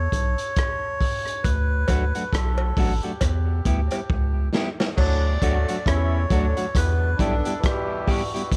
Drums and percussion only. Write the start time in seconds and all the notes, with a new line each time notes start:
0.12 kick, closed hi-hat
0.38 closed hi-hat
0.56 kick, cross-stick, closed hi-hat
1.01 kick, open hi-hat
1.28 closed hi-hat
1.44 kick, closed hi-hat
1.88 kick, closed hi-hat, cowbell
2.15 closed hi-hat
2.33 kick, cross-stick, closed hi-hat
2.58 cowbell
2.77 kick, open hi-hat
3.03 closed hi-hat
3.21 kick, cross-stick, closed hi-hat, cowbell
3.65 kick, closed hi-hat
3.91 closed hi-hat, cowbell
4.10 kick
4.55 snare
4.80 snare, cowbell
4.98 kick, crash
5.42 kick, closed hi-hat
5.68 closed hi-hat
5.86 kick, cross-stick, closed hi-hat
6.30 kick, closed hi-hat
6.57 closed hi-hat
6.75 kick, cross-stick, closed hi-hat
7.19 kick, closed hi-hat
7.45 closed hi-hat
7.63 kick, cross-stick, closed hi-hat
8.08 kick, open hi-hat
8.36 closed hi-hat
8.52 kick, closed hi-hat